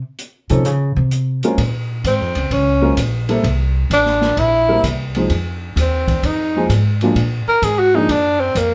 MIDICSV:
0, 0, Header, 1, 6, 480
1, 0, Start_track
1, 0, Key_signature, -5, "minor"
1, 0, Tempo, 464396
1, 1638, Time_signature, 4, 2, 24, 8
1, 9037, End_track
2, 0, Start_track
2, 0, Title_t, "Tenor saxophone"
2, 0, Program_c, 0, 66
2, 2142, Note_on_c, 0, 60, 71
2, 2611, Note_on_c, 0, 61, 72
2, 2626, Note_off_c, 0, 60, 0
2, 3084, Note_off_c, 0, 61, 0
2, 4064, Note_on_c, 0, 62, 79
2, 4538, Note_on_c, 0, 64, 87
2, 4553, Note_off_c, 0, 62, 0
2, 5009, Note_off_c, 0, 64, 0
2, 6003, Note_on_c, 0, 60, 64
2, 6465, Note_on_c, 0, 63, 74
2, 6481, Note_off_c, 0, 60, 0
2, 6933, Note_off_c, 0, 63, 0
2, 7734, Note_on_c, 0, 70, 87
2, 7894, Note_on_c, 0, 68, 82
2, 7910, Note_off_c, 0, 70, 0
2, 8053, Note_on_c, 0, 66, 83
2, 8068, Note_off_c, 0, 68, 0
2, 8216, Note_on_c, 0, 63, 73
2, 8231, Note_off_c, 0, 66, 0
2, 8382, Note_on_c, 0, 62, 80
2, 8397, Note_off_c, 0, 63, 0
2, 8682, Note_on_c, 0, 60, 76
2, 8698, Note_off_c, 0, 62, 0
2, 8864, Note_on_c, 0, 58, 70
2, 8879, Note_off_c, 0, 60, 0
2, 9037, Note_off_c, 0, 58, 0
2, 9037, End_track
3, 0, Start_track
3, 0, Title_t, "Upright piano"
3, 0, Program_c, 1, 0
3, 515, Note_on_c, 1, 53, 60
3, 515, Note_on_c, 1, 61, 54
3, 516, Note_on_c, 1, 63, 57
3, 517, Note_on_c, 1, 60, 55
3, 521, Note_on_c, 1, 69, 67
3, 660, Note_off_c, 1, 53, 0
3, 660, Note_off_c, 1, 61, 0
3, 660, Note_off_c, 1, 63, 0
3, 661, Note_off_c, 1, 60, 0
3, 663, Note_off_c, 1, 69, 0
3, 1483, Note_on_c, 1, 60, 56
3, 1488, Note_on_c, 1, 56, 60
3, 1491, Note_on_c, 1, 61, 59
3, 1493, Note_on_c, 1, 65, 60
3, 1497, Note_on_c, 1, 70, 70
3, 1624, Note_off_c, 1, 60, 0
3, 1626, Note_off_c, 1, 56, 0
3, 1628, Note_off_c, 1, 61, 0
3, 1629, Note_off_c, 1, 65, 0
3, 1631, Note_off_c, 1, 70, 0
3, 2910, Note_on_c, 1, 61, 56
3, 2911, Note_on_c, 1, 56, 60
3, 2914, Note_on_c, 1, 65, 58
3, 2916, Note_on_c, 1, 60, 55
3, 2918, Note_on_c, 1, 70, 69
3, 3057, Note_off_c, 1, 61, 0
3, 3058, Note_off_c, 1, 56, 0
3, 3060, Note_off_c, 1, 60, 0
3, 3060, Note_off_c, 1, 65, 0
3, 3062, Note_off_c, 1, 70, 0
3, 3399, Note_on_c, 1, 55, 62
3, 3400, Note_on_c, 1, 58, 53
3, 3401, Note_on_c, 1, 64, 62
3, 3405, Note_on_c, 1, 60, 61
3, 3409, Note_on_c, 1, 69, 68
3, 3542, Note_off_c, 1, 55, 0
3, 3542, Note_off_c, 1, 58, 0
3, 3543, Note_off_c, 1, 64, 0
3, 3545, Note_off_c, 1, 60, 0
3, 3547, Note_off_c, 1, 69, 0
3, 4841, Note_on_c, 1, 58, 64
3, 4843, Note_on_c, 1, 55, 65
3, 4846, Note_on_c, 1, 64, 63
3, 4847, Note_on_c, 1, 60, 58
3, 4849, Note_on_c, 1, 70, 72
3, 4984, Note_off_c, 1, 58, 0
3, 4985, Note_off_c, 1, 55, 0
3, 4986, Note_off_c, 1, 60, 0
3, 4986, Note_off_c, 1, 64, 0
3, 4988, Note_off_c, 1, 70, 0
3, 5335, Note_on_c, 1, 56, 53
3, 5339, Note_on_c, 1, 53, 62
3, 5342, Note_on_c, 1, 60, 57
3, 5342, Note_on_c, 1, 63, 53
3, 5345, Note_on_c, 1, 68, 68
3, 5471, Note_off_c, 1, 56, 0
3, 5473, Note_off_c, 1, 53, 0
3, 5474, Note_off_c, 1, 60, 0
3, 5474, Note_off_c, 1, 63, 0
3, 5476, Note_off_c, 1, 68, 0
3, 6782, Note_on_c, 1, 53, 59
3, 6783, Note_on_c, 1, 56, 57
3, 6784, Note_on_c, 1, 60, 55
3, 6793, Note_on_c, 1, 63, 57
3, 6797, Note_on_c, 1, 68, 70
3, 6915, Note_off_c, 1, 53, 0
3, 6915, Note_off_c, 1, 56, 0
3, 6916, Note_off_c, 1, 60, 0
3, 6920, Note_off_c, 1, 63, 0
3, 6922, Note_off_c, 1, 68, 0
3, 7257, Note_on_c, 1, 53, 57
3, 7261, Note_on_c, 1, 58, 53
3, 7265, Note_on_c, 1, 56, 54
3, 7266, Note_on_c, 1, 62, 52
3, 7270, Note_on_c, 1, 65, 64
3, 7393, Note_off_c, 1, 53, 0
3, 7395, Note_off_c, 1, 58, 0
3, 7397, Note_off_c, 1, 56, 0
3, 7397, Note_off_c, 1, 62, 0
3, 7399, Note_off_c, 1, 65, 0
3, 8210, Note_on_c, 1, 56, 54
3, 8211, Note_on_c, 1, 53, 61
3, 8211, Note_on_c, 1, 58, 55
3, 8212, Note_on_c, 1, 62, 60
3, 8216, Note_on_c, 1, 68, 74
3, 8350, Note_off_c, 1, 53, 0
3, 8350, Note_off_c, 1, 56, 0
3, 8350, Note_off_c, 1, 58, 0
3, 8351, Note_off_c, 1, 62, 0
3, 8353, Note_off_c, 1, 68, 0
3, 9037, End_track
4, 0, Start_track
4, 0, Title_t, "Upright bass"
4, 0, Program_c, 2, 32
4, 519, Note_on_c, 2, 48, 96
4, 677, Note_off_c, 2, 48, 0
4, 677, Note_on_c, 2, 49, 93
4, 990, Note_off_c, 2, 49, 0
4, 997, Note_on_c, 2, 48, 96
4, 1444, Note_off_c, 2, 48, 0
4, 1631, Note_on_c, 2, 46, 80
4, 2100, Note_off_c, 2, 46, 0
4, 2110, Note_on_c, 2, 44, 77
4, 2283, Note_off_c, 2, 44, 0
4, 2283, Note_on_c, 2, 41, 53
4, 2432, Note_off_c, 2, 41, 0
4, 2439, Note_on_c, 2, 37, 60
4, 2585, Note_off_c, 2, 37, 0
4, 2591, Note_on_c, 2, 37, 77
4, 3060, Note_off_c, 2, 37, 0
4, 3071, Note_on_c, 2, 34, 78
4, 3540, Note_off_c, 2, 34, 0
4, 3550, Note_on_c, 2, 36, 83
4, 4020, Note_off_c, 2, 36, 0
4, 4032, Note_on_c, 2, 33, 75
4, 4501, Note_off_c, 2, 33, 0
4, 4515, Note_on_c, 2, 34, 80
4, 4983, Note_off_c, 2, 34, 0
4, 4994, Note_on_c, 2, 36, 73
4, 5462, Note_off_c, 2, 36, 0
4, 5475, Note_on_c, 2, 41, 80
4, 5944, Note_off_c, 2, 41, 0
4, 5953, Note_on_c, 2, 39, 86
4, 6423, Note_off_c, 2, 39, 0
4, 6441, Note_on_c, 2, 41, 79
4, 6907, Note_off_c, 2, 41, 0
4, 6916, Note_on_c, 2, 44, 82
4, 7384, Note_off_c, 2, 44, 0
4, 7394, Note_on_c, 2, 46, 80
4, 7697, Note_off_c, 2, 46, 0
4, 7875, Note_on_c, 2, 44, 78
4, 8345, Note_off_c, 2, 44, 0
4, 8359, Note_on_c, 2, 42, 80
4, 8827, Note_off_c, 2, 42, 0
4, 8836, Note_on_c, 2, 41, 76
4, 9037, Note_off_c, 2, 41, 0
4, 9037, End_track
5, 0, Start_track
5, 0, Title_t, "Muted upright bass strokes"
5, 7719, Note_on_c, 9, 29, 37
5, 7823, Note_off_c, 9, 29, 0
5, 9037, End_track
6, 0, Start_track
6, 0, Title_t, "Drums"
6, 193, Note_on_c, 9, 42, 49
6, 296, Note_off_c, 9, 42, 0
6, 513, Note_on_c, 9, 42, 44
6, 616, Note_off_c, 9, 42, 0
6, 671, Note_on_c, 9, 42, 43
6, 775, Note_off_c, 9, 42, 0
6, 1151, Note_on_c, 9, 42, 55
6, 1254, Note_off_c, 9, 42, 0
6, 1478, Note_on_c, 9, 42, 47
6, 1581, Note_off_c, 9, 42, 0
6, 1632, Note_on_c, 9, 36, 23
6, 1633, Note_on_c, 9, 51, 61
6, 1735, Note_off_c, 9, 36, 0
6, 1736, Note_off_c, 9, 51, 0
6, 2113, Note_on_c, 9, 36, 22
6, 2114, Note_on_c, 9, 44, 48
6, 2114, Note_on_c, 9, 51, 62
6, 2216, Note_off_c, 9, 36, 0
6, 2217, Note_off_c, 9, 44, 0
6, 2217, Note_off_c, 9, 51, 0
6, 2431, Note_on_c, 9, 51, 43
6, 2534, Note_off_c, 9, 51, 0
6, 2593, Note_on_c, 9, 36, 19
6, 2595, Note_on_c, 9, 51, 50
6, 2696, Note_off_c, 9, 36, 0
6, 2698, Note_off_c, 9, 51, 0
6, 3070, Note_on_c, 9, 44, 61
6, 3070, Note_on_c, 9, 51, 65
6, 3073, Note_on_c, 9, 36, 18
6, 3174, Note_off_c, 9, 44, 0
6, 3174, Note_off_c, 9, 51, 0
6, 3176, Note_off_c, 9, 36, 0
6, 3399, Note_on_c, 9, 51, 47
6, 3502, Note_off_c, 9, 51, 0
6, 3555, Note_on_c, 9, 36, 20
6, 3557, Note_on_c, 9, 51, 50
6, 3658, Note_off_c, 9, 36, 0
6, 3661, Note_off_c, 9, 51, 0
6, 4035, Note_on_c, 9, 36, 21
6, 4039, Note_on_c, 9, 44, 53
6, 4039, Note_on_c, 9, 51, 65
6, 4139, Note_off_c, 9, 36, 0
6, 4142, Note_off_c, 9, 44, 0
6, 4142, Note_off_c, 9, 51, 0
6, 4195, Note_on_c, 9, 38, 26
6, 4298, Note_off_c, 9, 38, 0
6, 4356, Note_on_c, 9, 38, 42
6, 4460, Note_off_c, 9, 38, 0
6, 4515, Note_on_c, 9, 36, 18
6, 4519, Note_on_c, 9, 51, 55
6, 4618, Note_off_c, 9, 36, 0
6, 4622, Note_off_c, 9, 51, 0
6, 4996, Note_on_c, 9, 36, 21
6, 5000, Note_on_c, 9, 44, 59
6, 5000, Note_on_c, 9, 51, 61
6, 5100, Note_off_c, 9, 36, 0
6, 5104, Note_off_c, 9, 44, 0
6, 5104, Note_off_c, 9, 51, 0
6, 5320, Note_on_c, 9, 51, 43
6, 5423, Note_off_c, 9, 51, 0
6, 5475, Note_on_c, 9, 51, 55
6, 5476, Note_on_c, 9, 36, 19
6, 5578, Note_off_c, 9, 51, 0
6, 5580, Note_off_c, 9, 36, 0
6, 5959, Note_on_c, 9, 36, 17
6, 5963, Note_on_c, 9, 44, 47
6, 5963, Note_on_c, 9, 51, 62
6, 6062, Note_off_c, 9, 36, 0
6, 6067, Note_off_c, 9, 44, 0
6, 6067, Note_off_c, 9, 51, 0
6, 6281, Note_on_c, 9, 36, 51
6, 6286, Note_on_c, 9, 51, 46
6, 6384, Note_off_c, 9, 36, 0
6, 6389, Note_off_c, 9, 51, 0
6, 6440, Note_on_c, 9, 36, 25
6, 6443, Note_on_c, 9, 51, 63
6, 6543, Note_off_c, 9, 36, 0
6, 6547, Note_off_c, 9, 51, 0
6, 6920, Note_on_c, 9, 36, 18
6, 6923, Note_on_c, 9, 44, 55
6, 6923, Note_on_c, 9, 51, 61
6, 7024, Note_off_c, 9, 36, 0
6, 7026, Note_off_c, 9, 44, 0
6, 7026, Note_off_c, 9, 51, 0
6, 7245, Note_on_c, 9, 51, 43
6, 7349, Note_off_c, 9, 51, 0
6, 7399, Note_on_c, 9, 36, 22
6, 7401, Note_on_c, 9, 51, 57
6, 7502, Note_off_c, 9, 36, 0
6, 7504, Note_off_c, 9, 51, 0
6, 7879, Note_on_c, 9, 36, 20
6, 7881, Note_on_c, 9, 44, 49
6, 7881, Note_on_c, 9, 51, 62
6, 7982, Note_off_c, 9, 36, 0
6, 7985, Note_off_c, 9, 44, 0
6, 7985, Note_off_c, 9, 51, 0
6, 8359, Note_on_c, 9, 36, 16
6, 8363, Note_on_c, 9, 51, 60
6, 8462, Note_off_c, 9, 36, 0
6, 8466, Note_off_c, 9, 51, 0
6, 8840, Note_on_c, 9, 36, 27
6, 8842, Note_on_c, 9, 44, 56
6, 8842, Note_on_c, 9, 51, 60
6, 8943, Note_off_c, 9, 36, 0
6, 8946, Note_off_c, 9, 44, 0
6, 8946, Note_off_c, 9, 51, 0
6, 9037, End_track
0, 0, End_of_file